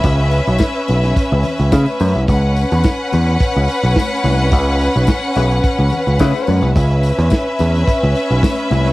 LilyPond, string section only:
\new Staff \with { instrumentName = "String section" } { \time 4/4 \key cis \minor \tempo 4 = 107 <cis' b' e''>1 | <cis' b' fis''>1~ | <cis' b' fis''>1 | <cis' b' e''>1 | }